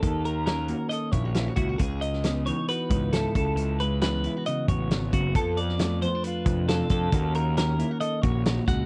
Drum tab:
HH |x-x-x-x-x-x-x-x-|x-x-x-x-x-x-x-x-|x-x-x-x-x-x-x-x-|x-x-x-x-x-x-x-x-|
SD |----o-------o---|---oo-------o---|----o-------o---|---oo-------o---|
BD |o---------o---o-|o---------o---o-|----------o---o-|o---------o---o-|

HH |x-x-x-x-x-x-x-x-|
SD |----o-------o---|
BD |o---------o---o-|